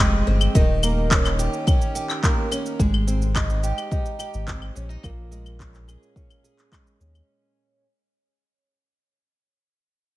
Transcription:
Already playing: F1 F2 C4 G4
0.00 G#3
0.27 G1 C4
0.41 claves, shaker
0.55 D#1 D#3, kick, shaker
0.83 A#3, claves, shaker
1.11 C#4, kick, clap, shaker
1.25 clap, claves, shaker
1.39 G4, shaker
1.53 shaker
1.67 C#4, kick, claves, shaker
1.81 shaker
1.95 G4, shaker
2.10 clap, claves, shaker
2.23 A#3, kick, clap, shaker
2.51 C#4, claves, shaker
2.66 shaker
2.79 G#1 G#3, kick, shaker
2.94 claves
3.07 C4, shaker
3.22 shaker
3.35 D#4, kick, clap, claves, shaker
3.50 shaker
3.63 G4, shaker
3.78 claves, shaker
3.91 D#4, kick, shaker
4.06 shaker
4.19 G4, claves, shaker
4.34 G#1, shaker
4.47 C4, kick, clap, shaker
4.62 claves
4.75 A#1 C#4, shaker
4.89 D#4, shaker
5.03 A#1 A#2, kick, claves, shaker
5.31 G#3, shaker
5.46 claves, shaker
5.60 C#4, kick, clap, shaker
5.74 clap, shaker
5.88 G#4, claves, shaker
6.03 shaker
6.16 C#4, kick, shaker
6.30 claves, shaker
6.44 G#4, shaker
6.59 clap, shaker
6.72 G#3, kick, clap, claves, shaker
6.87 shaker
7.00 D#2 C#4, shaker
7.15 claves, shaker

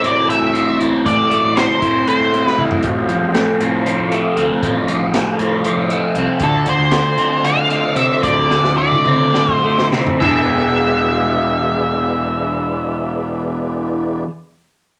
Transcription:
Already playing: A2 E3 A3 C4
0.03 A2 E4, closed hi-hat
0.07 D5
0.29 A3 E5, closed hi-hat
0.42 A2
0.53 C4, closed hi-hat
0.79 A1 E4, closed hi-hat
1.04 A1 A2 D5, kick, closed hi-hat
1.31 A3, closed hi-hat
1.45 A1
1.56 C4 C5, snare, closed hi-hat
1.82 A2 E4, kick, closed hi-hat
2.07 A3 C5, closed hi-hat
2.21 A2
2.33 C4, closed hi-hat
2.47 B4, snare
2.58 A1 E4, mid tom
2.71 floor tom
2.83 A1 A2 F4 A4, kick, closed hi-hat
2.87 C5 F5
3.08 F3, closed hi-hat
3.23 A1
3.34 A3, snare, closed hi-hat
3.61 A2 C4, closed hi-hat
3.86 F3, closed hi-hat
3.99 A2
4.12 A3, closed hi-hat
4.37 D2 C4, closed hi-hat
4.63 A1 A2, kick, closed hi-hat
4.88 F3, closed hi-hat
5.01 A1
5.14 A3, snare, closed hi-hat
5.39 A2 C4, closed hi-hat
5.64 F3, closed hi-hat
5.77 A2
5.90 A3, closed hi-hat
6.15 C2 C4, closed hi-hat
6.40 D2 D3 D5, kick, closed hi-hat
6.44 A4
6.66 D3 C5, closed hi-hat
6.79 D2
6.91 A3, snare, closed hi-hat
7.18 D3 C4, closed hi-hat
7.44 D3 F5, snare, closed hi-hat
7.56 D3
7.69 A3, closed hi-hat
7.95 C3 C4 E5, closed hi-hat
8.23 D2 D3 D5 E5, kick, closed hi-hat
8.49 D3, snare
8.64 D2, snare
8.77 A3 D5
8.91 mid tom
9.05 D3 C4, mid tom
9.34 D3, snare
9.48 D3, kick
9.54 C5
9.64 A3
9.78 snare
9.91 C3 C4, snare
10.07 floor tom
10.20 E1 E3 B3 E4 G#4 B4 D5 E5, kick, floor tom, china
10.25 D4 G#4

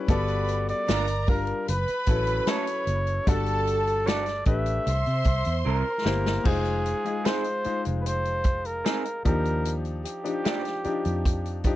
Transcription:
Already playing: G3 C#4 E4 A4
0.08 G1 G3 B3 F#4 A4 B4 D5 B5, kick, closed hi-hat
0.28 closed hi-hat
0.49 closed hi-hat
0.69 D5, closed hi-hat
0.88 G1 A#3 D4 F4 A#4 A#5, snare, closed hi-hat
1.07 closed hi-hat
1.27 G3 D4 F4 A#4, kick, open hi-hat
1.47 closed hi-hat
1.68 F#1 B4 B5, closed hi-hat
1.88 muted fingered electric bass stroke, closed hi-hat
2.06 A1 F#3 C#4 E4 A4, kick, closed hi-hat
2.27 closed hi-hat
2.47 A3 C#4 E4 A4 C#5, snare, closed hi-hat
2.67 closed hi-hat
2.87 F#1, closed hi-hat
3.07 closed hi-hat
3.27 G1 G3 D4 F#4 A4 A5, kick, closed hi-hat
3.46 closed hi-hat
3.67 closed hi-hat
3.87 closed hi-hat
4.06 G3 D4 F#4 A4 D5, snare, closed hi-hat
4.26 snare, closed hi-hat
4.45 A1 A3 D4 G4 B4 E5, kick, closed hi-hat
4.66 closed hi-hat
4.87 C2 C5 C6, closed hi-hat
5.06 C3, closed hi-hat
5.24 C2, kick, closed hi-hat
5.45 E2, closed hi-hat
5.65 C2 G3 C4 E4 A#4
6.05 G1 A#3 E4 G4 C5, snare
6.26 snare
6.44 F1 G#3 D#4 F4 G#4 C5, kick, crash
6.65 closed hi-hat
6.86 closed hi-hat
7.05 G#3 D#4 F4 G#4, closed hi-hat
7.24 G#3 C4 D#4 G#4 C5, snare, closed hi-hat
7.44 closed hi-hat
7.64 G#3 D#4 F4 C5, muted fingered electric bass stroke, closed hi-hat
7.85 F1, closed hi-hat
8.01 B4
8.06 C5, closed hi-hat
8.25 closed hi-hat
8.44 kick, closed hi-hat
8.65 A#4, closed hi-hat
8.85 G#3 C4 D#4 G#4, snare, closed hi-hat
9.05 closed hi-hat
9.25 D#2 F3 D4 D#4 G4 A#4, kick, closed hi-hat
9.45 closed hi-hat
9.65 closed hi-hat
9.85 closed hi-hat
10.05 G4, closed hi-hat
10.24 F3 D4 D#4 G4, closed hi-hat
10.44 F3 A#3 D4 G4, snare, closed hi-hat
10.65 snare, closed hi-hat
10.84 F3 D4 D#4 G4, muted fingered electric bass stroke, closed hi-hat
11.05 F2, closed hi-hat
11.25 kick, closed hi-hat
11.45 closed hi-hat
11.64 F3 D4 D#4 G4, kick, closed hi-hat

